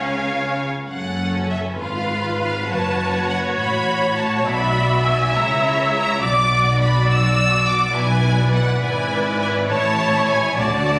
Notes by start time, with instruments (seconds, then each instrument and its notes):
Already playing: double bass section C#2, cello section C#3, viola section C#4, violin section C#5 F5 G#5
0.88 double bass section F#1, cello section F#2, violin section C#4 A4 F#5
1.50 violin section E5
1.80 double bass section G#1, cello section G#2, violin section F4 B4 F5, viola section B4
2.40 violin section F5
2.69 double bass section F#1, cello section F#2, violin section F#4 C#5 A5
3.28 violin section F#5
3.58 double bass section A1, cello section A2, viola section C#5, violin section B5
4.18 violin section A5
4.46 double bass section B1, cello section B2, violin section F#4 D5 B5, viola section E5
5.05 violin section G#5
5.34 double bass section C#2, cello section C#3, violin section E4 C#5 A#5
5.94 violin section A#5
6.22 double bass section B1, cello section B2, violin section F#4 D5 D6, viola section D5
6.81 violin section B5
7.10 violin section E6
7.68 violin section D6
7.96 double bass section B1, cello section B2, violin section E4 D5 G#5, viola section B4
8.54 violin section F#5
8.82 double bass section G#1, cello section G#2, violin section E4 D5 G#5
9.41 violin section G#5
9.68 double bass section A1, cello section A2, violin section E4 C#5 A5, viola section C#5
10.29 violin section G#5
10.57 double bass section D2, cello section D3, violin section F#4 D5 A5, viola section D5